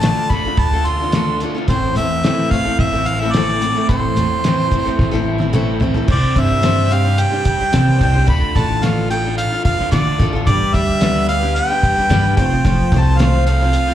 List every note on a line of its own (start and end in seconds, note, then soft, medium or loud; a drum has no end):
0.00 0.30 D3 medium
0.00 0.29 A3 medium
0.00 0.30 A3 medium
0.00 0.30 D4 medium
0.00 0.31 F4 medium
0.00 0.31 A4 medium
0.00 0.33 A5 medium
0.00 snare loud
0.00 closed hi-hat medium
0.30 0.44 A3 soft
0.30 0.45 D4 medium
0.30 0.46 F4 medium
0.30 0.60 B5 loud
0.30 kick medium
0.30 closed hi-hat medium
0.34 0.44 A4 medium
0.45 0.74 D4 soft
0.45 0.73 F4 soft
0.45 0.72 A4 medium
0.57 1.43 D2 medium
0.57 1.12 D4 medium
0.57 0.88 A5 loud
0.57 kick loud
0.57 closed hi-hat medium
0.73 1.02 D4 soft
0.73 1.01 F4 soft
0.73 0.99 A4 medium
0.85 1.69 F4 medium
0.85 1.41 C6 medium
0.85 closed hi-hat medium
1.00 1.14 D4 soft
1.00 1.14 F4 soft
1.00 1.13 A4 soft
1.12 1.41 D3 medium
1.12 1.41 A3 medium
1.12 1.42 D4 medium
1.12 1.42 F4 medium
1.12 1.42 A4 medium
1.12 snare loud
1.12 closed hi-hat medium
1.40 1.55 A3 soft
1.40 1.56 D4 medium
1.40 1.55 F4 medium
1.40 closed hi-hat medium
1.45 1.53 A4 medium
1.55 1.70 D4 soft
1.55 1.69 F4 soft
1.55 1.68 A4 soft
1.68 1.90 A1 medium
1.68 1.97 A2 medium
1.68 1.97 E3 medium
1.68 1.94 A3 medium
1.68 1.96 C4 medium
1.68 1.96 E4 medium
1.68 1.98 A4 medium
1.68 1.94 C5 medium
1.68 kick loud
1.68 closed hi-hat medium
1.95 2.17 E2 medium
1.95 2.23 E3 medium
1.95 2.23 A3 medium
1.95 2.24 C4 medium
1.95 2.25 E4 medium
1.95 2.25 A4 medium
1.95 2.52 E5 loud
1.95 closed hi-hat medium
2.24 2.52 A2 medium
2.24 2.52 E3 medium
2.24 2.50 A3 medium
2.24 2.52 C4 medium
2.24 2.53 E4 medium
2.24 2.52 A4 medium
2.24 snare loud
2.24 closed hi-hat medium
2.50 2.65 A3 medium
2.50 2.66 C4 medium
2.50 2.65 E4 medium
2.50 2.79 F5 loud
2.50 kick medium
2.50 closed hi-hat medium
2.56 2.64 A4 medium
2.65 2.94 A3 soft
2.65 2.94 C4 soft
2.65 2.93 E4 soft
2.65 2.92 A4 medium
2.79 3.64 A1 medium
2.79 3.33 C4 medium
2.79 3.09 E5 loud
2.79 kick loud
2.79 closed hi-hat medium
2.93 3.22 A3 soft
2.93 3.22 C4 soft
2.93 3.21 E4 soft
2.93 3.20 A4 soft
3.06 4.45 E4 medium
3.06 3.22 F5 medium
3.06 closed hi-hat medium
3.20 3.36 C4 soft
3.20 3.35 E4 soft
3.20 3.35 A4 soft
3.20 3.34 E5 medium
3.25 3.35 A3 soft
3.32 3.62 A2 medium
3.32 3.62 E3 medium
3.32 3.88 D5 medium
3.32 snare loud
3.32 closed hi-hat medium
3.36 3.60 A3 medium
3.36 3.61 C4 medium
3.36 3.62 E4 medium
3.36 3.63 A4 medium
3.61 3.75 A3 soft
3.61 3.76 C4 medium
3.61 3.75 E4 medium
3.61 3.73 A4 medium
3.61 closed hi-hat medium
3.74 3.88 A3 soft
3.74 3.89 C4 soft
3.74 3.89 E4 soft
3.74 3.89 A4 medium
3.89 4.10 A1 medium
3.89 4.16 A2 medium
3.89 4.17 E3 medium
3.89 4.15 A3 medium
3.89 4.16 C4 medium
3.89 4.17 E4 medium
3.89 4.17 A4 medium
3.89 5.50 C5 medium
3.89 kick medium
3.89 closed hi-hat medium
4.16 4.38 E2 medium
4.16 4.44 E3 medium
4.16 4.43 A3 medium
4.16 4.45 C4 medium
4.16 4.44 E4 medium
4.16 4.45 A4 medium
4.16 closed hi-hat medium
4.44 4.72 A2 medium
4.44 4.72 E3 medium
4.44 4.70 A3 medium
4.44 4.71 C4 medium
4.44 4.72 E4 medium
4.44 4.73 A4 medium
4.44 snare loud
4.44 closed hi-hat medium
4.71 4.85 A3 medium
4.71 4.86 C4 medium
4.71 4.85 E4 medium
4.71 4.84 A4 medium
4.71 kick medium
4.71 closed hi-hat medium
4.85 5.14 A3 soft
4.85 5.13 C4 soft
4.85 5.12 E4 medium
4.85 5.10 A4 medium
4.99 5.84 A1 medium
4.99 5.53 C4 medium
4.99 kick loud
4.99 snare soft
5.11 5.41 A3 medium
5.11 5.40 C4 medium
5.11 5.39 E4 medium
5.11 5.37 A4 medium
5.11 snare soft
5.26 6.09 E4 medium
5.38 5.52 A3 soft
5.38 5.53 C4 soft
5.38 5.53 E4 soft
5.38 5.53 A4 medium
5.38 high tom medium
5.53 5.81 A2 medium
5.53 5.81 E3 medium
5.53 5.79 A3 medium
5.53 5.80 C4 medium
5.53 5.81 E4 medium
5.53 5.82 A4 medium
5.53 mid tom medium
5.80 5.94 A3 medium
5.80 5.95 C4 medium
5.80 5.94 E4 medium
5.80 5.93 A4 medium
5.80 floor tom medium
5.94 6.07 A3 soft
5.94 6.07 C4 medium
5.94 6.09 E4 medium
5.94 6.08 A4 medium
5.94 floor tom medium
6.08 6.19 C2 medium
6.08 7.47 C3 medium
6.08 6.35 C4 medium
6.08 6.36 D4 medium
6.08 6.37 G4 medium
6.08 6.37 C5 medium
6.08 6.41 D5 medium
6.08 kick loud
6.08 crash medium
6.36 7.21 G2 medium
6.36 7.46 G3 medium
6.36 6.60 C4 medium
6.36 6.61 D4 medium
6.36 6.62 G4 medium
6.36 6.64 C5 medium
6.36 6.94 E5 medium
6.36 kick medium
6.36 closed hi-hat medium
6.62 6.88 C4 medium
6.62 6.90 D4 medium
6.62 6.91 G4 medium
6.62 6.92 C5 medium
6.62 snare loud
6.62 closed hi-hat medium
6.90 7.04 C4 medium
6.90 7.05 D4 medium
6.90 7.04 G4 medium
6.90 7.03 C5 medium
6.90 7.21 F5 loud
6.90 closed hi-hat medium
7.04 7.32 D4 soft
7.04 7.31 G4 soft
7.04 7.29 C5 soft
7.18 8.01 D4 medium
7.18 8.02 G5 loud
7.18 closed hi-hat medium
7.30 7.60 D4 soft
7.30 7.60 G4 soft
7.30 7.57 C5 soft
7.45 8.28 G3 medium
7.45 kick medium
7.45 closed hi-hat medium
7.58 7.72 D4 soft
7.58 7.73 G4 soft
7.58 7.73 C5 soft
7.72 7.95 C3 medium
7.72 7.97 C4 medium
7.72 8.00 D4 medium
7.72 8.00 G4 medium
7.72 8.02 C5 medium
7.72 snare loud
7.72 closed hi-hat medium
7.99 8.22 C2 medium
7.99 8.13 C4 medium
7.99 8.15 D4 medium
7.99 8.15 G4 medium
7.99 8.27 G5 medium
7.99 kick medium
7.99 closed hi-hat medium
8.03 8.13 C5 medium
8.14 8.26 D4 soft
8.14 8.28 G4 soft
8.14 8.28 C5 medium
8.26 8.39 D2 medium
8.26 8.55 D3 medium
8.26 8.54 A3 medium
8.26 8.55 D4 medium
8.26 8.56 F4 medium
8.26 8.56 A4 medium
8.26 8.58 B5 loud
8.26 kick loud
8.26 closed hi-hat medium
8.55 9.40 A1 medium
8.55 9.65 D3 medium
8.55 8.82 A3 medium
8.55 8.82 D4 medium
8.55 8.83 F4 medium
8.55 8.84 A4 medium
8.55 8.85 A5 loud
8.55 kick medium
8.55 closed hi-hat medium
8.82 9.10 D3 medium
8.82 9.08 A3 medium
8.82 9.10 D4 medium
8.82 9.11 F4 medium
8.82 9.11 A4 medium
8.82 9.10 F5 medium
8.82 snare loud
8.82 closed hi-hat loud
9.09 9.24 A3 medium
9.09 9.24 D4 medium
9.09 9.24 F4 medium
9.09 9.36 G5 medium
9.09 closed hi-hat medium
9.13 9.23 A4 medium
9.24 9.53 D4 soft
9.24 9.51 F4 soft
9.24 9.49 A4 soft
9.37 10.19 F4 medium
9.37 9.63 F5 loud
9.37 closed hi-hat medium
9.51 9.80 D4 soft
9.51 9.78 F4 soft
9.51 9.76 A4 soft
9.65 10.47 D3 medium
9.65 9.90 F5 loud
9.65 kick medium
9.65 closed hi-hat medium
9.77 9.91 D4 soft
9.77 9.92 F4 soft
9.77 9.92 A4 medium
9.77 snare soft
9.91 10.19 D3 medium
9.91 10.13 D3 medium
9.91 10.17 A3 medium
9.91 10.19 D4 medium
9.91 10.20 F4 medium
9.91 10.20 A4 medium
9.91 10.30 D5 medium
9.91 snare loud
9.91 closed hi-hat medium
10.19 10.41 A1 medium
10.19 10.33 A3 medium
10.19 10.33 D4 medium
10.19 10.34 F4 medium
10.19 10.32 A4 medium
10.19 kick medium
10.19 closed hi-hat medium
10.33 10.46 D4 soft
10.33 10.48 F4 soft
10.33 10.47 A4 medium
10.46 10.57 G1 medium
10.46 10.72 G3 medium
10.46 10.73 D4 medium
10.46 10.74 G4 medium
10.46 10.75 B4 medium
10.46 10.75 D5 loud
10.46 kick loud
10.46 closed hi-hat medium
10.73 11.59 D2 medium
10.73 11.00 G3 medium
10.73 11.01 D4 medium
10.73 11.02 G4 medium
10.73 11.02 B4 medium
10.73 11.28 E5 loud
10.73 kick medium
10.73 closed hi-hat medium
11.01 11.27 G3 medium
11.01 11.54 B3 medium
11.01 11.28 D4 medium
11.01 11.29 G4 medium
11.01 11.30 B4 medium
11.01 snare loud
11.01 closed hi-hat medium
11.29 11.42 G3 medium
11.29 11.43 D4 medium
11.29 11.41 G4 medium
11.29 11.39 B4 medium
11.29 11.56 F5 loud
11.29 closed hi-hat medium
11.40 11.70 D4 soft
11.40 11.69 G4 soft
11.40 11.67 B4 medium
11.55 12.37 B3 medium
11.55 12.36 G5 loud
11.55 closed hi-hat medium
11.68 11.98 D4 soft
11.68 11.96 G4 medium
11.68 11.95 B4 medium
11.83 12.38 G3 medium
11.83 kick medium
11.83 closed hi-hat medium
11.96 12.09 D4 soft
11.96 12.10 G4 soft
11.96 12.10 B4 medium
12.09 12.31 G2 medium
12.09 12.37 G3 medium
12.09 12.38 D4 medium
12.09 12.38 G4 medium
12.09 12.39 B4 medium
12.09 snare loud
12.09 closed hi-hat medium
12.37 12.59 F1 medium
12.37 12.64 F3 medium
12.37 12.51 A3 medium
12.37 12.52 C4 medium
12.37 12.51 F4 medium
12.37 12.50 C5 medium
12.37 13.02 G5 medium
12.37 kick medium
12.37 closed hi-hat medium
12.51 12.65 C4 medium
12.51 12.66 F4 soft
12.51 12.65 C5 medium
12.65 12.76 F1 loud
12.65 12.92 F3 medium
12.65 12.92 A3 medium
12.65 12.93 C4 medium
12.65 12.93 F4 medium
12.65 12.93 C5 medium
12.65 kick loud
12.65 closed hi-hat medium
12.92 13.76 C2 medium
12.92 13.18 A3 soft
12.92 13.19 C4 medium
12.92 kick medium
12.92 closed hi-hat medium
12.96 13.20 F4 medium
12.96 13.20 C5 medium
13.00 13.20 A5 medium
13.18 13.46 F3 medium
13.18 13.45 A3 medium
13.18 13.46 C4 medium
13.18 13.48 F4 medium
13.18 13.48 C5 medium
13.18 13.45 F5 medium
13.18 snare loud
13.18 closed hi-hat medium
13.46 13.60 A3 medium
13.46 13.61 C4 medium
13.46 13.61 F4 medium
13.46 13.94 A4 medium
13.46 13.59 C5 medium
13.46 13.94 F5 loud
13.46 closed hi-hat medium
13.60 13.89 C4 soft
13.60 13.88 F4 medium
13.60 13.86 C5 medium
13.73 13.94 F4 medium
13.73 closed hi-hat medium
13.87 13.94 F4 soft
13.87 13.94 C5 medium